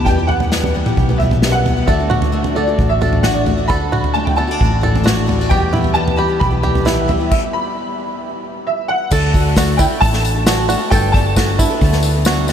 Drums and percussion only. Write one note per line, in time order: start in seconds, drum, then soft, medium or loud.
0.06 kick loud
0.06 floor tom medium
0.29 floor tom medium
0.40 floor tom medium
0.52 snare medium
0.64 floor tom medium
0.86 mid tom medium
0.97 kick medium
0.97 floor tom medium
1.09 floor tom medium
1.20 floor tom medium
1.31 floor tom medium
1.31 mid tom medium
1.42 snare medium
1.66 floor tom medium
1.88 kick medium
1.88 floor tom medium
2.11 mid tom medium
2.22 floor tom medium
2.44 floor tom medium
2.79 kick medium
2.79 floor tom medium
3.02 floor tom medium
3.13 floor tom medium
3.23 snare medium
3.23 mid tom medium
3.46 floor tom medium
3.70 kick medium
3.70 floor tom medium
3.93 mid tom medium
4.04 floor tom medium
4.27 floor tom medium
4.61 kick medium
4.61 floor tom medium
4.84 floor tom medium
4.96 floor tom medium
5.07 snare medium
5.07 mid tom medium
5.29 floor tom medium
5.51 kick loud
5.51 floor tom medium
5.74 mid tom medium
5.84 floor tom medium
6.08 floor tom medium
6.41 kick medium
6.41 floor tom medium
6.64 floor tom medium
6.75 floor tom medium
6.87 snare medium
6.87 mid tom medium
7.09 floor tom medium
7.31 kick loud
7.31 crash medium
9.11 kick loud
9.11 crash medium
9.11 tambourine medium
9.34 kick medium
9.34 open hi-hat medium
9.34 tambourine soft
9.57 kick medium
9.57 snare loud
9.57 open hi-hat medium
9.57 tambourine medium
9.79 kick medium
9.79 open hi-hat medium
9.79 tambourine medium
10.02 kick loud
10.02 open hi-hat medium
10.02 tambourine soft
10.13 snare soft
10.24 open hi-hat medium
10.24 tambourine medium
10.47 snare loud
10.47 open hi-hat medium
10.47 tambourine loud
10.70 open hi-hat medium
10.70 tambourine medium
10.92 kick loud
10.92 open hi-hat medium
10.92 tambourine medium
11.14 kick medium
11.14 open hi-hat medium
11.14 tambourine soft
11.36 kick medium
11.36 snare loud
11.36 open hi-hat medium
11.36 tambourine loud
11.59 kick medium
11.59 open hi-hat soft
11.59 tambourine medium
11.81 kick loud
11.81 open hi-hat medium
11.81 tambourine soft
11.93 snare soft
12.03 open hi-hat soft
12.03 tambourine medium
12.25 snare loud
12.25 open hi-hat medium
12.25 tambourine loud
12.48 snare soft
12.48 open hi-hat soft
12.48 tambourine medium